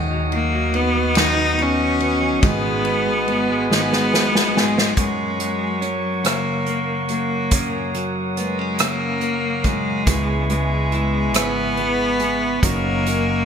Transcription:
Already playing: D#2 D#3 F#3 D#4 F#4 D#5 F#5 D#6
0.11 F#3
0.32 A#3, ride
0.53 F#3
0.73 F#3 B3 D#4 B4, ride
0.95 F#3
1.15 D#3 F#3 B3 D#4 B4, snare, ride
1.37 F#3
1.58 B3 C#4, ride
1.80 F#3
2.00 B3 D#4 B4, ride
2.21 F#3
2.42 G#1 G#2 D#3 G#3 B3 D#4 G#4 D#5 G#5, kick, ride
2.63 G#3
2.85 B3, ride
3.07 G#3
3.28 G#3 B3 D#4 G#4, ride
3.50 G#3
3.70 G#2 D#3 G#3 B3 D#4 G#4, snare
3.75 B3
3.91 G#3, snare
4.13 B3, snare
4.34 G#3, snare
4.55 G#3 B3 D#4 G#4, snare
4.60 G#3
4.76 G#3, snare
4.96 F#2 G#3 C#4 A#4 C#5 F#5 C#6, kick, closed hi-hat
5.39 F#3, closed hi-hat
5.81 F#3 C#4, closed hi-hat
6.24 C#3 A#3, cross-stick, closed hi-hat
6.66 A#3, closed hi-hat
7.08 F#3 A#3, closed hi-hat
7.51 F#2 C#4 D#6, kick, closed hi-hat
7.94 F#3, closed hi-hat
8.37 G#3 B3, closed hi-hat
8.59 C#4
8.78 C#3 A#3, cross-stick, closed hi-hat
9.21 A#3, closed hi-hat
9.64 F#3 G#3, kick, closed hi-hat
10.06 C#2 C#3 G#3 B3 E4 G#4 B4 E5 G#5 C#6, kick, closed hi-hat
10.49 G#3 B3 E4 G#4, closed hi-hat
10.92 G#3 B3 E4 G#4, closed hi-hat
11.34 G#1 C#3 G#3 B3 E4 G#4, cross-stick, closed hi-hat
11.77 G#3 B3 E4 G#4, closed hi-hat
12.19 G#3 B3 E4 G#4, closed hi-hat
12.62 F#1 F#3 A#3 C#4 D#4 A#4 D#5 F#5 C#6, kick, closed hi-hat
13.05 C#4 A#4, closed hi-hat

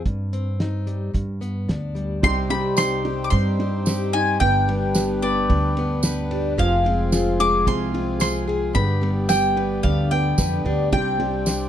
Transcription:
0.06 G2, kick, closed hi-hat
0.33 C4, closed hi-hat
0.60 D#4, snare, closed hi-hat
0.87 G3, closed hi-hat
1.14 G2, kick, closed hi-hat
1.41 B3, closed hi-hat
1.68 D2 D4, snare, closed hi-hat
1.95 G3, closed hi-hat
2.21 C2 C3 G3 D#4 G4 C5 G5 C6, kick, ride
2.50 G3 B5, ride
2.77 C4 D#4 C6, snare, ride, tambourine
3.05 G3 G4, ride
3.24 D6
3.30 G2 C4 C6, kick, ride
3.59 G3 C4, ride
3.86 C4 G4, snare, ride, tambourine
4.13 D#4 G#5, ride
4.40 G1 G2 B3 D4 B4 G5, kick, ride
4.68 G3 B3, ride
4.95 B3 G4, snare, ride, tambourine
5.22 B3 B4 D5, ride
5.49 D2 D3 D4, kick, ride
5.77 B3, ride
6.03 D4 B4, snare, ride, tambourine
6.31 D4 G4, ride
6.58 F1 F3 C4 G#4 F5 G#5, kick, ride
6.84 G#3 C4, ride
7.12 F4 G#4, snare, ride, tambourine
7.40 G#3 G#4 D6, ride
7.65 C2 C3 C4 C6, kick, ride
7.94 G#3 F4, ride
8.20 C4 G#4 C6, snare, ride, tambourine
8.47 G#4, ride
8.73 G1 G2 B3 G4 D5 G5 B5, kick, ride
9.01 G3 B3, ride
9.29 B3 G4 G5, snare, ride, tambourine
9.57 B3 B4, ride
9.83 D2 D3 D4 F5, kick, ride
10.11 B3 G5, ride
10.38 F2 D4 B4, kick, snare, ride, tambourine
10.65 D2 D4 G4, ride
10.92 C2 C3 G3 C4 G5, kick, ride
11.19 G3, ride
11.46 D4, snare, ride, tambourine

